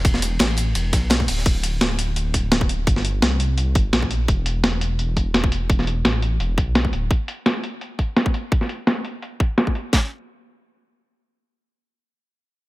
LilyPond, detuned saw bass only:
\new Staff \with { instrumentName = "Detuned saw bass" } { \clef bass \time 4/4 \key e \minor \tempo 4 = 170 e,,4 a,,4 e,,8 b,,4 d,,8 | d,,1 | g,,4 c,4. g,,8 bes,,4 | e,,1~ |
e,,4 a,,4 e,,8 b,,4 d,,8 | r1 | r1 | r1 |
r1 | }